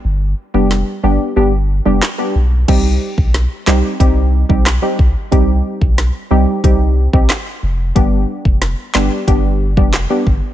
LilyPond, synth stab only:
\new Staff \with { instrumentName = "Synth stab" } { \time 4/4 \key c \minor \tempo 4 = 91 r8. <g b d' g'>8. <g b d' g'>8 <g b d' g'>16 r8 <g b d' g'>16 r16 <g b d' g'>16 r8 | <g c' ees' g'>4. <g c' ees' g'>8 <g c' ees' g'>8. <g c' ees' g'>16 r16 <g c' ees' g'>16 r8 | <g c' ees' g'>4. <g c' ees' g'>8 <g c' ees' g'>8. <g c' ees' g'>16 r4 | <g b d' g'>4. <g b d' g'>8 <g b d' g'>8. <g b d' g'>16 r16 <g b d' g'>16 r8 | }